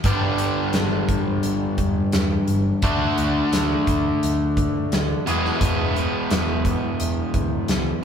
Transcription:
0.04 0.48 G1 medium
0.04 2.81 G2 medium
0.04 2.81 D3 medium
0.04 2.82 G3 medium
0.04 2.82 B3 medium
0.04 2.82 D4 medium
0.04 2.82 G4 loud
0.04 kick loud
0.04 closed hi-hat medium
0.38 closed hi-hat medium
0.73 1.18 G1 medium
0.73 snare loud
0.73 closed hi-hat medium
1.09 kick medium
1.09 closed hi-hat medium
1.43 1.66 G1 medium
1.43 closed hi-hat medium
1.78 2.00 E1 medium
1.78 kick medium
1.78 closed hi-hat soft
2.12 2.35 E2 medium
2.12 snare loud
2.12 closed hi-hat medium
2.48 2.70 G1 medium
2.48 closed hi-hat medium
2.82 3.04 D2 medium
2.82 5.24 D3 medium
2.82 5.24 A3 medium
2.82 5.25 D4 medium
2.82 5.28 F#4 medium
2.82 kick loud
2.82 closed hi-hat medium
3.18 3.40 D2 medium
3.18 closed hi-hat soft
3.52 3.74 D2 medium
3.52 snare loud
3.52 closed hi-hat medium
3.87 4.09 D2 medium
3.87 kick medium
3.87 closed hi-hat medium
4.23 4.66 D2 medium
4.23 closed hi-hat medium
4.57 kick medium
4.57 closed hi-hat medium
4.92 5.13 D2 medium
4.92 snare loud
4.92 closed hi-hat medium
5.27 5.49 E1 medium
5.27 8.01 E2 medium
5.27 8.02 B2 medium
5.27 8.02 E3 medium
5.27 8.02 G#3 medium
5.27 8.02 B3 medium
5.27 8.03 G#4 medium
5.27 closed hi-hat medium
5.45 snare soft
5.61 6.04 E1 medium
5.61 kick loud
5.61 closed hi-hat medium
5.96 closed hi-hat soft
6.30 6.74 E1 medium
6.30 snare loud
6.30 closed hi-hat medium
6.65 kick medium
6.65 closed hi-hat medium
7.00 7.21 E1 medium
7.00 closed hi-hat medium
7.34 7.56 D2 medium
7.34 kick medium
7.34 closed hi-hat medium
7.68 7.91 C#2 medium
7.68 snare loud
7.68 closed hi-hat medium

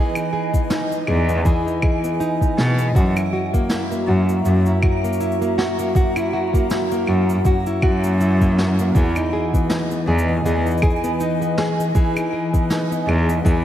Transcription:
0.00 1.45 E3 medium
0.00 2.91 E3 medium
0.00 0.53 B3 medium
0.00 0.15 D#4 medium
0.00 0.32 G#4 medium
0.00 2.91 D#5 medium
0.00 2.91 G#5 medium
0.15 0.69 D#4 medium
0.15 cabasa soft
0.15 claves medium
0.33 1.07 G#4 medium
0.54 0.90 B3 medium
0.54 kick medium
0.54 cabasa medium
0.70 1.65 D#4 medium
0.70 snare medium
0.70 cabasa medium
0.91 1.28 B3 medium
0.91 cabasa soft
1.07 1.37 E2 medium
1.07 1.45 G#4 medium
1.07 claves medium
1.29 2.03 B3 medium
1.29 cabasa medium
1.45 3.36 E3 medium
1.45 1.82 G#4 medium
1.45 kick medium
1.45 cabasa medium
1.66 2.19 D#4 medium
1.66 cabasa soft
1.82 2.57 G#4 medium
1.82 kick medium
1.82 claves medium
2.04 2.40 B3 medium
2.04 cabasa medium
2.20 3.04 D#4 medium
2.20 cabasa medium
2.41 2.78 B3 medium
2.41 kick medium
2.41 cabasa medium
2.58 2.87 B2 medium
2.58 2.95 G#4 medium
2.58 snare medium
2.79 3.04 B3 medium
2.79 cabasa medium
2.95 3.11 F#2 medium
2.95 4.44 F#2 medium
2.95 8.91 F#4 medium
2.95 3.32 F#4 medium
2.95 5.92 E5 medium
2.95 8.91 A#5 medium
2.95 kick loud
2.95 cabasa medium
3.16 3.70 E4 medium
3.16 cabasa medium
3.16 claves medium
3.33 4.07 F#4 medium
3.54 3.90 A#3 medium
3.54 kick medium
3.54 cabasa medium
3.69 4.66 E4 medium
3.69 snare medium
3.69 cabasa medium
3.92 4.28 A#3 medium
3.92 cabasa soft
4.07 4.37 F#2 medium
4.07 4.45 F#4 medium
4.29 5.03 A#3 medium
4.29 cabasa medium
4.45 4.61 F#2 medium
4.45 5.95 F#2 medium
4.45 4.82 F#4 medium
4.45 cabasa medium
4.66 5.20 E4 medium
4.66 cabasa soft
4.83 5.57 F#4 medium
4.83 kick medium
4.83 claves medium
5.04 5.40 A#3 medium
5.04 cabasa medium
5.13 cabasa medium
5.20 6.16 E4 medium
5.20 cabasa medium
5.20 cabasa soft
5.32 cabasa soft
5.41 5.78 A#3 medium
5.41 cabasa soft
5.58 5.95 F#4 medium
5.58 snare medium
5.79 6.53 A#3 medium
5.79 cabasa medium
5.95 7.44 F#2 medium
5.95 6.32 F#4 medium
5.95 8.92 F#5 medium
5.95 kick loud
5.95 cabasa medium
6.16 6.70 E4 medium
6.16 cabasa soft
6.16 claves medium
6.33 7.07 F#4 medium
6.53 6.91 A#3 medium
6.53 kick medium
6.53 cabasa medium
6.70 7.66 E4 medium
6.70 snare medium
6.70 cabasa medium
6.91 7.28 A#3 medium
6.91 cabasa soft
7.07 7.37 F#2 medium
7.07 7.45 F#4 medium
7.07 claves medium
7.29 8.03 A#3 medium
7.29 cabasa medium
7.45 9.04 F#2 medium
7.45 7.82 F#4 medium
7.45 kick loud
7.45 cabasa medium
7.66 8.20 E4 medium
7.66 cabasa soft
7.82 8.88 F#2 medium
7.82 8.57 F#4 medium
7.82 kick loud
7.82 claves medium
8.04 8.40 A#3 medium
8.04 cabasa medium
8.21 9.16 E4 medium
8.21 cabasa medium
8.41 8.78 A#3 medium
8.41 kick medium
8.41 cabasa medium
8.58 8.95 F#4 medium
8.58 snare medium
8.79 9.04 A#3 medium
8.79 cabasa medium
8.95 9.11 E2 medium
8.95 13.64 E3 medium
8.95 10.45 E3 medium
8.95 9.32 G#4 medium
8.95 13.64 D#5 medium
8.95 13.64 G#5 medium
8.95 kick loud
8.95 cabasa medium
9.16 9.69 D#4 medium
9.16 cabasa soft
9.16 claves medium
9.33 10.07 G#4 medium
9.53 9.90 B3 medium
9.53 kick medium
9.53 cabasa medium
9.70 10.65 D#4 medium
9.70 snare medium
9.70 cabasa medium
9.91 10.28 B3 medium
9.91 cabasa soft
10.07 10.37 E2 medium
10.07 10.45 G#4 medium
10.19 cabasa medium
10.29 11.03 B3 medium
10.45 10.61 E2 medium
10.45 11.95 E3 medium
10.45 10.82 G#4 medium
10.45 cabasa medium
10.66 11.19 D#4 medium
10.66 cabasa soft
10.70 cabasa soft
10.78 cabasa soft
10.82 11.57 G#4 medium
10.82 kick medium
10.82 cabasa soft
10.82 claves medium
10.90 cabasa soft
10.96 cabasa soft
11.04 11.40 B3 medium
11.04 cabasa medium
11.20 12.15 D#4 medium
11.20 cabasa medium
11.41 11.78 B3 medium
11.41 cabasa soft
11.58 11.95 G#4 medium
11.58 snare medium
11.79 12.53 B3 medium
11.79 cabasa medium
11.95 13.45 E3 medium
11.95 12.32 G#4 medium
11.95 kick loud
11.95 cabasa medium
12.16 12.69 D#4 medium
12.16 cabasa soft
12.16 claves medium
12.33 13.07 G#4 medium
12.53 12.90 B3 medium
12.53 kick medium
12.53 cabasa medium
12.70 13.64 D#4 medium
12.70 snare medium
12.70 cabasa medium
12.91 13.27 B3 medium
12.91 cabasa medium
13.08 13.37 E2 medium
13.08 13.45 G#4 medium
13.08 claves medium
13.29 13.64 B3 medium
13.29 cabasa medium
13.45 13.61 E2 medium
13.45 13.64 E3 medium
13.45 13.64 G#4 medium
13.45 kick loud
13.45 cabasa medium

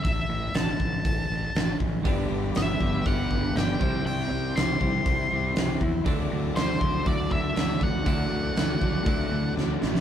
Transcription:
0.04 0.24 A1 medium
0.04 0.56 E5 medium
0.04 kick loud
0.04 open hi-hat medium
0.29 0.48 A1 medium
0.54 0.74 A1 medium
0.54 1.76 A5 loud
0.54 snare loud
0.54 open hi-hat medium
0.80 0.99 A1 medium
0.80 kick medium
1.05 1.25 A1 medium
1.05 kick loud
1.05 open hi-hat medium
1.30 1.49 A1 medium
1.55 1.74 A1 medium
1.55 snare loud
1.55 open hi-hat medium
1.80 2.00 A1 medium
1.80 kick medium
2.03 2.25 G1 medium
2.03 3.03 G2 medium
2.03 2.78 G2 medium
2.03 3.04 D3 medium
2.03 2.79 D3 medium
2.03 3.06 G3 medium
2.03 2.81 G3 medium
2.03 3.04 B3 loud
2.03 2.79 B3 medium
2.03 3.05 D4 loud
2.03 2.79 D4 medium
2.03 6.03 G4 medium
2.03 3.79 B4 medium
2.03 3.79 D5 medium
2.03 3.79 B5 medium
2.03 kick loud
2.03 open hi-hat medium
2.30 2.49 G1 medium
2.55 2.75 G1 medium
2.55 3.08 E5 medium
2.55 snare loud
2.55 open hi-hat medium
2.80 3.00 G1 medium
2.80 3.54 G2 medium
2.80 3.55 D3 medium
2.80 3.55 G3 medium
2.80 3.54 B3 medium
2.80 3.54 D4 medium
2.80 kick medium
3.05 3.25 G1 medium
3.05 3.79 G2 medium
3.05 3.78 D3 medium
3.05 3.79 G3 medium
3.05 3.80 B3 medium
3.05 3.80 D4 medium
3.05 3.57 F#5 medium
3.05 kick loud
3.05 open hi-hat medium
3.31 3.50 G1 medium
3.31 kick medium
3.55 3.74 G1 medium
3.55 3.79 G2 medium
3.55 3.79 D3 medium
3.55 3.80 G3 medium
3.55 3.80 B3 medium
3.55 3.81 D4 medium
3.55 4.05 G5 medium
3.55 snare loud
3.55 open hi-hat medium
3.78 4.00 C2 medium
3.78 4.78 C3 medium
3.78 4.54 C3 medium
3.78 4.79 G3 medium
3.78 4.55 G3 medium
3.78 4.79 C4 medium
3.78 4.55 C4 medium
3.78 4.78 E4 medium
3.78 6.05 C5 medium
3.78 8.03 E5 medium
3.78 6.04 C6 medium
3.78 kick loud
3.82 4.58 E4 medium
4.06 4.25 C2 medium
4.06 4.58 G5 medium
4.06 open hi-hat medium
4.31 4.50 C2 medium
4.55 4.76 C2 medium
4.55 5.29 C3 medium
4.55 5.30 G3 medium
4.55 5.30 C4 medium
4.55 5.30 E4 medium
4.55 5.77 C6 loud
4.55 snare loud
4.55 open hi-hat medium
4.79 5.00 C2 medium
4.79 5.80 C3 medium
4.79 5.80 G3 medium
4.79 5.79 C4 medium
4.79 6.07 E4 medium
4.79 kick medium
5.06 5.25 C2 medium
5.06 kick loud
5.06 open hi-hat medium
5.30 5.51 C2 medium
5.30 5.81 C3 medium
5.30 5.80 G3 medium
5.30 5.80 C4 medium
5.30 6.07 E4 medium
5.56 5.76 C2 medium
5.56 snare loud
5.56 open hi-hat medium
5.81 6.00 E2 medium
5.81 kick medium
6.04 6.25 D2 medium
6.04 7.04 D3 medium
6.04 6.82 D3 medium
6.04 7.06 F#3 medium
6.04 6.81 F#3 medium
6.04 7.06 A3 medium
6.04 6.81 A3 medium
6.04 6.80 D4 loud
6.04 7.07 E4 loud
6.04 10.01 F#4 medium
6.04 10.01 D5 medium
6.04 10.01 A5 medium
6.04 kick loud
6.04 open hi-hat medium
6.32 6.51 D2 medium
6.56 6.76 D2 medium
6.56 7.08 C5 medium
6.56 snare loud
6.56 open hi-hat medium
6.80 7.00 D2 medium
6.80 7.53 D3 medium
6.80 7.54 F#3 medium
6.80 7.55 A3 medium
6.80 7.56 D4 medium
6.80 kick medium
7.04 7.26 D2 medium
7.04 8.03 D3 medium
7.04 8.04 F#3 medium
7.04 8.05 A3 medium
7.04 8.06 E4 medium
7.04 7.32 D5 medium
7.04 kick loud
7.04 open hi-hat medium
7.31 7.51 D2 medium
7.31 7.83 E5 medium
7.31 kick medium
7.54 7.76 D2 medium
7.54 8.04 D3 medium
7.54 8.05 F#3 medium
7.54 8.05 A3 medium
7.54 8.07 D4 medium
7.54 snare loud
7.54 open hi-hat medium
7.81 8.01 D2 medium
7.81 9.53 F#5 loud
7.81 kick medium
8.04 8.26 D2 loud
8.04 9.04 D3 medium
8.04 8.79 D3 medium
8.04 9.05 F#3 medium
8.04 8.80 F#3 medium
8.04 8.80 A3 loud
8.04 9.05 A3 medium
8.04 8.80 D4 loud
8.04 9.06 E4 loud
8.04 10.01 F#5 medium
8.04 kick loud
8.04 open hi-hat medium
8.32 8.51 D2 medium
8.56 8.76 D2 medium
8.56 snare loud
8.56 open hi-hat medium
8.81 9.01 D2 medium
8.81 9.54 D3 medium
8.81 9.56 F#3 medium
8.81 9.55 A3 medium
8.81 9.55 D4 medium
8.81 kick medium
9.06 9.25 D2 medium
9.06 10.01 D3 medium
9.06 10.01 F#3 medium
9.06 10.01 A3 medium
9.06 10.01 E4 medium
9.06 kick loud
9.06 open hi-hat medium
9.32 9.51 D2 medium
9.55 9.76 D2 medium
9.55 10.01 D3 medium
9.55 10.01 F#3 medium
9.55 10.01 A3 medium
9.55 10.01 D4 loud
9.55 snare medium
9.82 10.01 A1 medium
9.82 snare medium
9.95 snare medium

